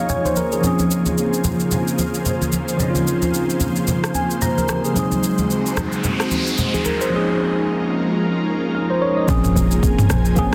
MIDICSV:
0, 0, Header, 1, 7, 480
1, 0, Start_track
1, 0, Key_signature, -5, "minor"
1, 0, Tempo, 540541
1, 567, Time_signature, 4, 2, 24, 8
1, 9367, End_track
2, 0, Start_track
2, 0, Title_t, "Ambient pad"
2, 0, Program_c, 0, 92
2, 0, Note_on_c, 0, 58, 79
2, 0, Note_on_c, 0, 63, 70
2, 0, Note_on_c, 0, 65, 75
2, 0, Note_on_c, 0, 68, 73
2, 0, Note_on_c, 0, 73, 90
2, 529, Note_off_c, 0, 63, 0
2, 547, Note_off_c, 0, 73, 0
2, 566, Note_on_c, 0, 49, 73
2, 567, Note_on_c, 0, 72, 90
2, 4371, Note_off_c, 0, 49, 0
2, 4371, Note_off_c, 0, 58, 0
2, 4371, Note_off_c, 0, 68, 0
2, 4372, Note_off_c, 0, 65, 0
2, 4403, Note_on_c, 0, 56, 82
2, 4404, Note_on_c, 0, 63, 75
2, 4404, Note_on_c, 0, 66, 77
2, 4405, Note_on_c, 0, 60, 74
2, 6291, Note_off_c, 0, 72, 0
2, 6306, Note_off_c, 0, 66, 0
2, 6307, Note_off_c, 0, 60, 0
2, 6325, Note_on_c, 0, 61, 74
2, 6325, Note_on_c, 0, 65, 78
2, 6325, Note_on_c, 0, 70, 89
2, 8209, Note_off_c, 0, 56, 0
2, 8210, Note_off_c, 0, 63, 0
2, 8226, Note_off_c, 0, 61, 0
2, 8226, Note_off_c, 0, 65, 0
2, 8226, Note_off_c, 0, 70, 0
2, 8245, Note_on_c, 0, 49, 82
2, 8245, Note_on_c, 0, 72, 81
2, 8245, Note_on_c, 0, 80, 89
2, 8246, Note_on_c, 0, 70, 74
2, 9367, Note_off_c, 0, 49, 0
2, 9367, Note_off_c, 0, 70, 0
2, 9367, Note_off_c, 0, 72, 0
2, 9367, Note_off_c, 0, 80, 0
2, 9367, End_track
3, 0, Start_track
3, 0, Title_t, "Tine electric piano"
3, 0, Program_c, 1, 4
3, 0, Control_c, 1, 64, 127
3, 0, Note_on_c, 1, 53, 75
3, 0, Note_on_c, 1, 58, 67
3, 0, Note_on_c, 1, 61, 68
3, 0, Note_on_c, 1, 63, 68
3, 0, Note_on_c, 1, 68, 78
3, 0, Note_on_c, 1, 73, 66
3, 0, Note_on_c, 1, 75, 71
3, 0, Note_on_c, 1, 77, 58
3, 86, Note_off_c, 1, 73, 0
3, 86, Note_on_c, 1, 73, 70
3, 86, Note_on_c, 1, 80, 68
3, 218, Note_off_c, 1, 73, 0
3, 226, Note_on_c, 1, 72, 68
3, 321, Note_off_c, 1, 72, 0
3, 327, Note_on_c, 1, 70, 70
3, 459, Note_off_c, 1, 70, 0
3, 467, Note_off_c, 1, 68, 0
3, 467, Note_on_c, 1, 68, 66
3, 517, Note_off_c, 1, 53, 0
3, 524, Note_off_c, 1, 58, 0
3, 531, Note_off_c, 1, 61, 0
3, 533, Note_off_c, 1, 80, 0
3, 538, Note_off_c, 1, 63, 0
3, 540, Note_on_c, 1, 53, 75
3, 553, Note_on_c, 1, 58, 66
3, 568, Note_on_c, 1, 60, 66
3, 579, Control_c, 1, 64, 0
3, 581, Note_on_c, 1, 61, 64
3, 583, Note_off_c, 1, 77, 0
3, 585, Note_off_c, 1, 75, 0
3, 586, Note_off_c, 1, 68, 0
3, 596, Note_on_c, 1, 68, 77
3, 730, Control_c, 1, 64, 127
3, 2437, Note_off_c, 1, 53, 0
3, 2444, Note_off_c, 1, 58, 0
3, 2451, Note_off_c, 1, 60, 0
3, 2458, Note_off_c, 1, 61, 0
3, 2460, Note_on_c, 1, 53, 72
3, 2466, Note_off_c, 1, 68, 0
3, 2474, Note_on_c, 1, 58, 67
3, 2488, Note_on_c, 1, 60, 68
3, 2503, Note_on_c, 1, 61, 69
3, 2517, Note_on_c, 1, 63, 63
3, 2568, Note_off_c, 1, 63, 0
3, 2575, Note_on_c, 1, 65, 81
3, 3686, Note_on_c, 1, 80, 69
3, 3884, Note_off_c, 1, 53, 0
3, 3891, Note_off_c, 1, 58, 0
3, 3898, Note_off_c, 1, 60, 0
3, 3906, Note_off_c, 1, 61, 0
3, 3909, Note_off_c, 1, 80, 0
3, 3925, Note_on_c, 1, 72, 63
3, 3925, Note_on_c, 1, 82, 72
3, 3943, Note_off_c, 1, 65, 0
3, 4058, Note_off_c, 1, 72, 0
3, 4066, Note_on_c, 1, 70, 67
3, 4161, Note_off_c, 1, 70, 0
3, 4167, Note_on_c, 1, 67, 74
3, 4299, Note_off_c, 1, 67, 0
3, 4304, Note_on_c, 1, 68, 65
3, 4372, Note_off_c, 1, 82, 0
3, 4377, Note_on_c, 1, 54, 73
3, 4391, Note_on_c, 1, 56, 70
3, 4406, Note_on_c, 1, 60, 70
3, 4419, Control_c, 1, 64, 0
3, 4419, Note_on_c, 1, 63, 68
3, 4423, Note_off_c, 1, 68, 0
3, 4434, Note_on_c, 1, 68, 80
3, 4568, Control_c, 1, 64, 127
3, 5596, Note_off_c, 1, 68, 0
3, 5986, Note_on_c, 1, 68, 61
3, 6082, Note_off_c, 1, 68, 0
3, 6087, Note_on_c, 1, 70, 75
3, 6219, Note_off_c, 1, 70, 0
3, 6225, Note_on_c, 1, 72, 66
3, 6276, Note_off_c, 1, 54, 0
3, 6283, Note_off_c, 1, 56, 0
3, 6291, Note_off_c, 1, 60, 0
3, 6297, Note_off_c, 1, 63, 0
3, 6300, Note_on_c, 1, 53, 77
3, 6314, Note_on_c, 1, 58, 70
3, 6327, Note_on_c, 1, 61, 70
3, 6337, Control_c, 1, 64, 0
3, 6342, Note_on_c, 1, 63, 68
3, 6357, Note_on_c, 1, 68, 84
3, 6453, Note_off_c, 1, 72, 0
3, 6491, Control_c, 1, 64, 127
3, 7768, Note_on_c, 1, 70, 66
3, 7899, Note_off_c, 1, 70, 0
3, 7906, Note_on_c, 1, 72, 67
3, 8001, Note_off_c, 1, 72, 0
3, 8006, Note_on_c, 1, 73, 71
3, 8138, Note_off_c, 1, 73, 0
3, 8144, Note_on_c, 1, 75, 67
3, 8198, Note_off_c, 1, 53, 0
3, 8204, Note_off_c, 1, 58, 0
3, 8211, Note_off_c, 1, 61, 0
3, 8219, Note_off_c, 1, 63, 0
3, 8226, Note_off_c, 1, 68, 0
3, 8232, Note_on_c, 1, 53, 94
3, 8239, Note_on_c, 1, 58, 85
3, 8245, Note_on_c, 1, 60, 80
3, 8254, Note_on_c, 1, 61, 84
3, 8257, Control_c, 1, 64, 0
3, 8260, Note_on_c, 1, 68, 101
3, 8373, Note_off_c, 1, 75, 0
3, 8436, Control_c, 1, 64, 127
3, 9015, Note_off_c, 1, 53, 0
3, 9018, Note_off_c, 1, 58, 0
3, 9021, Note_off_c, 1, 60, 0
3, 9026, Note_off_c, 1, 61, 0
3, 9029, Note_off_c, 1, 68, 0
3, 9193, Note_on_c, 1, 53, 88
3, 9201, Note_on_c, 1, 58, 83
3, 9207, Note_on_c, 1, 60, 78
3, 9215, Note_on_c, 1, 61, 82
3, 9222, Note_on_c, 1, 68, 99
3, 9367, Note_off_c, 1, 53, 0
3, 9367, Note_off_c, 1, 58, 0
3, 9367, Note_off_c, 1, 60, 0
3, 9367, Note_off_c, 1, 61, 0
3, 9367, Note_off_c, 1, 68, 0
3, 9367, End_track
4, 0, Start_track
4, 0, Title_t, "Log drum bass"
4, 0, Program_c, 2, 39
4, 8247, Note_on_c, 2, 34, 107
4, 8456, Note_off_c, 2, 34, 0
4, 8486, Note_on_c, 2, 34, 107
4, 8904, Note_off_c, 2, 34, 0
4, 8967, Note_on_c, 2, 34, 106
4, 9176, Note_off_c, 2, 34, 0
4, 9208, Note_on_c, 2, 32, 96
4, 9329, Note_off_c, 2, 32, 0
4, 9367, End_track
5, 0, Start_track
5, 0, Title_t, "Impact"
5, 0, Program_c, 3, 103
5, 8247, Note_on_c, 3, 60, 90
5, 9367, Note_off_c, 3, 60, 0
5, 9367, End_track
6, 0, Start_track
6, 0, Title_t, "Noise sweep"
6, 0, Program_c, 4, 103
6, 4405, Note_on_c, 4, 60, 82
6, 7286, Note_off_c, 4, 60, 0
6, 9367, End_track
7, 0, Start_track
7, 0, Title_t, "Drums"
7, 84, Note_on_c, 9, 82, 76
7, 85, Note_on_c, 9, 63, 47
7, 85, Note_on_c, 9, 64, 68
7, 172, Note_off_c, 9, 82, 0
7, 173, Note_off_c, 9, 63, 0
7, 173, Note_off_c, 9, 64, 0
7, 224, Note_on_c, 9, 63, 65
7, 229, Note_on_c, 9, 82, 45
7, 313, Note_off_c, 9, 63, 0
7, 318, Note_off_c, 9, 82, 0
7, 321, Note_on_c, 9, 82, 92
7, 324, Note_on_c, 9, 63, 62
7, 410, Note_off_c, 9, 82, 0
7, 413, Note_off_c, 9, 63, 0
7, 464, Note_on_c, 9, 82, 51
7, 553, Note_off_c, 9, 82, 0
7, 564, Note_on_c, 9, 64, 69
7, 566, Note_on_c, 9, 82, 77
7, 653, Note_off_c, 9, 64, 0
7, 655, Note_off_c, 9, 82, 0
7, 702, Note_on_c, 9, 82, 53
7, 705, Note_on_c, 9, 63, 66
7, 791, Note_off_c, 9, 82, 0
7, 794, Note_off_c, 9, 63, 0
7, 809, Note_on_c, 9, 82, 96
7, 898, Note_off_c, 9, 82, 0
7, 940, Note_on_c, 9, 82, 52
7, 942, Note_on_c, 9, 63, 68
7, 1029, Note_off_c, 9, 82, 0
7, 1031, Note_off_c, 9, 63, 0
7, 1048, Note_on_c, 9, 82, 63
7, 1137, Note_off_c, 9, 82, 0
7, 1187, Note_on_c, 9, 82, 55
7, 1276, Note_off_c, 9, 82, 0
7, 1283, Note_on_c, 9, 63, 73
7, 1283, Note_on_c, 9, 64, 79
7, 1283, Note_on_c, 9, 82, 95
7, 1371, Note_off_c, 9, 63, 0
7, 1371, Note_off_c, 9, 64, 0
7, 1372, Note_off_c, 9, 82, 0
7, 1421, Note_on_c, 9, 82, 46
7, 1510, Note_off_c, 9, 82, 0
7, 1522, Note_on_c, 9, 82, 80
7, 1524, Note_on_c, 9, 64, 69
7, 1611, Note_off_c, 9, 82, 0
7, 1613, Note_off_c, 9, 64, 0
7, 1668, Note_on_c, 9, 82, 52
7, 1757, Note_off_c, 9, 82, 0
7, 1765, Note_on_c, 9, 82, 78
7, 1766, Note_on_c, 9, 63, 70
7, 1853, Note_off_c, 9, 82, 0
7, 1854, Note_off_c, 9, 63, 0
7, 1905, Note_on_c, 9, 82, 51
7, 1994, Note_off_c, 9, 82, 0
7, 2003, Note_on_c, 9, 82, 73
7, 2004, Note_on_c, 9, 64, 67
7, 2092, Note_off_c, 9, 82, 0
7, 2093, Note_off_c, 9, 64, 0
7, 2146, Note_on_c, 9, 63, 67
7, 2149, Note_on_c, 9, 82, 48
7, 2235, Note_off_c, 9, 63, 0
7, 2238, Note_off_c, 9, 82, 0
7, 2242, Note_on_c, 9, 82, 94
7, 2246, Note_on_c, 9, 63, 62
7, 2331, Note_off_c, 9, 82, 0
7, 2335, Note_off_c, 9, 63, 0
7, 2384, Note_on_c, 9, 82, 53
7, 2473, Note_off_c, 9, 82, 0
7, 2482, Note_on_c, 9, 64, 67
7, 2485, Note_on_c, 9, 82, 74
7, 2571, Note_off_c, 9, 64, 0
7, 2574, Note_off_c, 9, 82, 0
7, 2621, Note_on_c, 9, 63, 67
7, 2622, Note_on_c, 9, 82, 52
7, 2710, Note_off_c, 9, 63, 0
7, 2711, Note_off_c, 9, 82, 0
7, 2731, Note_on_c, 9, 82, 90
7, 2819, Note_off_c, 9, 82, 0
7, 2861, Note_on_c, 9, 82, 51
7, 2862, Note_on_c, 9, 63, 69
7, 2950, Note_off_c, 9, 82, 0
7, 2951, Note_off_c, 9, 63, 0
7, 2968, Note_on_c, 9, 82, 64
7, 3057, Note_off_c, 9, 82, 0
7, 3108, Note_on_c, 9, 82, 53
7, 3197, Note_off_c, 9, 82, 0
7, 3201, Note_on_c, 9, 63, 76
7, 3201, Note_on_c, 9, 64, 75
7, 3202, Note_on_c, 9, 82, 90
7, 3290, Note_off_c, 9, 63, 0
7, 3290, Note_off_c, 9, 64, 0
7, 3291, Note_off_c, 9, 82, 0
7, 3339, Note_on_c, 9, 82, 43
7, 3427, Note_off_c, 9, 82, 0
7, 3441, Note_on_c, 9, 82, 82
7, 3442, Note_on_c, 9, 64, 74
7, 3530, Note_off_c, 9, 82, 0
7, 3531, Note_off_c, 9, 64, 0
7, 3585, Note_on_c, 9, 37, 81
7, 3589, Note_on_c, 9, 82, 51
7, 3674, Note_off_c, 9, 37, 0
7, 3677, Note_off_c, 9, 82, 0
7, 3681, Note_on_c, 9, 63, 68
7, 3684, Note_on_c, 9, 82, 79
7, 3770, Note_off_c, 9, 63, 0
7, 3772, Note_off_c, 9, 82, 0
7, 3824, Note_on_c, 9, 82, 51
7, 3913, Note_off_c, 9, 82, 0
7, 3922, Note_on_c, 9, 82, 76
7, 3925, Note_on_c, 9, 64, 67
7, 4011, Note_off_c, 9, 82, 0
7, 4013, Note_off_c, 9, 64, 0
7, 4067, Note_on_c, 9, 63, 65
7, 4069, Note_on_c, 9, 82, 44
7, 4155, Note_off_c, 9, 63, 0
7, 4158, Note_off_c, 9, 82, 0
7, 4163, Note_on_c, 9, 82, 92
7, 4165, Note_on_c, 9, 37, 86
7, 4166, Note_on_c, 9, 63, 61
7, 4251, Note_off_c, 9, 82, 0
7, 4254, Note_off_c, 9, 37, 0
7, 4255, Note_off_c, 9, 63, 0
7, 4305, Note_on_c, 9, 82, 55
7, 4394, Note_off_c, 9, 82, 0
7, 4405, Note_on_c, 9, 64, 68
7, 4405, Note_on_c, 9, 82, 74
7, 4493, Note_off_c, 9, 64, 0
7, 4494, Note_off_c, 9, 82, 0
7, 4544, Note_on_c, 9, 82, 52
7, 4545, Note_on_c, 9, 63, 65
7, 4633, Note_off_c, 9, 82, 0
7, 4634, Note_off_c, 9, 63, 0
7, 4650, Note_on_c, 9, 82, 97
7, 4739, Note_off_c, 9, 82, 0
7, 4780, Note_on_c, 9, 82, 54
7, 4784, Note_on_c, 9, 63, 71
7, 4868, Note_off_c, 9, 82, 0
7, 4873, Note_off_c, 9, 63, 0
7, 4889, Note_on_c, 9, 82, 61
7, 4978, Note_off_c, 9, 82, 0
7, 5029, Note_on_c, 9, 82, 55
7, 5118, Note_off_c, 9, 82, 0
7, 5125, Note_on_c, 9, 37, 86
7, 5125, Note_on_c, 9, 63, 75
7, 5125, Note_on_c, 9, 64, 76
7, 5125, Note_on_c, 9, 82, 94
7, 5214, Note_off_c, 9, 37, 0
7, 5214, Note_off_c, 9, 63, 0
7, 5214, Note_off_c, 9, 64, 0
7, 5214, Note_off_c, 9, 82, 0
7, 5261, Note_on_c, 9, 82, 46
7, 5349, Note_off_c, 9, 82, 0
7, 5364, Note_on_c, 9, 82, 80
7, 5367, Note_on_c, 9, 64, 76
7, 5452, Note_off_c, 9, 82, 0
7, 5456, Note_off_c, 9, 64, 0
7, 5505, Note_on_c, 9, 37, 80
7, 5508, Note_on_c, 9, 82, 52
7, 5593, Note_off_c, 9, 37, 0
7, 5597, Note_off_c, 9, 82, 0
7, 5605, Note_on_c, 9, 63, 67
7, 5606, Note_on_c, 9, 82, 80
7, 5694, Note_off_c, 9, 63, 0
7, 5694, Note_off_c, 9, 82, 0
7, 5745, Note_on_c, 9, 82, 53
7, 5834, Note_off_c, 9, 82, 0
7, 5842, Note_on_c, 9, 82, 72
7, 5847, Note_on_c, 9, 64, 69
7, 5931, Note_off_c, 9, 82, 0
7, 5936, Note_off_c, 9, 64, 0
7, 5988, Note_on_c, 9, 63, 65
7, 5990, Note_on_c, 9, 82, 47
7, 6076, Note_off_c, 9, 63, 0
7, 6079, Note_off_c, 9, 82, 0
7, 6083, Note_on_c, 9, 82, 93
7, 6089, Note_on_c, 9, 63, 63
7, 6172, Note_off_c, 9, 82, 0
7, 6178, Note_off_c, 9, 63, 0
7, 6226, Note_on_c, 9, 82, 53
7, 6315, Note_off_c, 9, 82, 0
7, 8247, Note_on_c, 9, 36, 126
7, 8247, Note_on_c, 9, 82, 82
7, 8336, Note_off_c, 9, 36, 0
7, 8336, Note_off_c, 9, 82, 0
7, 8386, Note_on_c, 9, 45, 63
7, 8386, Note_on_c, 9, 82, 57
7, 8474, Note_off_c, 9, 45, 0
7, 8475, Note_off_c, 9, 82, 0
7, 8494, Note_on_c, 9, 82, 104
7, 8583, Note_off_c, 9, 82, 0
7, 8624, Note_on_c, 9, 82, 55
7, 8713, Note_off_c, 9, 82, 0
7, 8728, Note_on_c, 9, 36, 94
7, 8732, Note_on_c, 9, 82, 72
7, 8817, Note_off_c, 9, 36, 0
7, 8821, Note_off_c, 9, 82, 0
7, 8867, Note_on_c, 9, 45, 113
7, 8873, Note_on_c, 9, 82, 58
7, 8955, Note_off_c, 9, 45, 0
7, 8961, Note_off_c, 9, 82, 0
7, 8968, Note_on_c, 9, 37, 93
7, 8968, Note_on_c, 9, 82, 102
7, 9057, Note_off_c, 9, 37, 0
7, 9057, Note_off_c, 9, 82, 0
7, 9104, Note_on_c, 9, 82, 49
7, 9193, Note_off_c, 9, 82, 0
7, 9205, Note_on_c, 9, 82, 88
7, 9208, Note_on_c, 9, 36, 115
7, 9294, Note_off_c, 9, 82, 0
7, 9297, Note_off_c, 9, 36, 0
7, 9367, End_track
0, 0, End_of_file